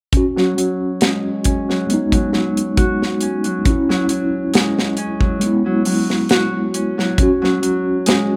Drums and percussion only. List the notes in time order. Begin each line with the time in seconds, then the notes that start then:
0.13 kick, closed hi-hat
0.37 snare
0.58 closed hi-hat
1.01 snare, closed hi-hat
1.44 kick, closed hi-hat
1.70 snare
1.90 closed hi-hat
2.12 kick, closed hi-hat
2.33 snare
2.57 closed hi-hat
2.77 kick, closed hi-hat
3.02 snare
3.21 closed hi-hat
3.44 closed hi-hat
3.65 kick, closed hi-hat
3.90 snare
4.09 closed hi-hat
4.54 snare, closed hi-hat
4.79 snare
4.97 closed hi-hat
5.21 kick
5.41 closed hi-hat
5.85 open hi-hat
6.10 snare
6.29 snare, closed hi-hat
6.74 closed hi-hat
6.99 snare
7.18 kick, closed hi-hat
7.44 snare
7.63 closed hi-hat
8.06 snare, closed hi-hat